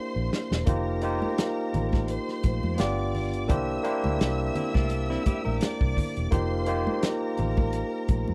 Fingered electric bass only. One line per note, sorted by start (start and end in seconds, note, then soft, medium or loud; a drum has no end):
0.16 0.29 A#1 medium
0.51 0.64 E1 medium
0.67 1.23 F1 loud
1.74 2.17 A1 medium
2.44 2.59 A#1 medium
2.63 2.76 F2 loud
2.80 3.50 G1 medium
3.50 3.78 C2 loud
4.05 4.18 D2 medium
4.21 4.49 C2 medium
4.76 5.16 C2 medium
5.27 muted fingered electric bass stroke soft
5.46 5.59 A#1 loud
5.81 5.94 C2 medium
6.17 6.30 E1 medium
6.32 6.88 F1 medium
7.39 7.82 A1 loud
8.09 8.24 A#1 medium
8.29 8.34 F2 loud